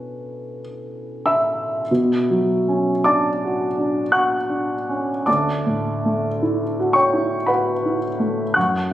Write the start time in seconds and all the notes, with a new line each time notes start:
Already playing: B2 C#4 D4 E4 A4 B4
1.26 E5 B5 E6
1.91 B2
2.30 F#3
2.68 C#4
3.04 D4 D5 A5 D6
3.45 F#4
3.78 D4
4.12 F#4 F#5 C#6 F#6
4.50 D4
4.89 C#4
5.26 D2 D5 A5 D6
5.66 A2
6.05 A3
6.43 E4
6.80 F#4
6.93 C#5 G5 C#6
7.13 E4
7.46 F#4 B4 F#5 B5
7.86 E4
8.19 A3
8.54 F#2 F#5 C#6 F#6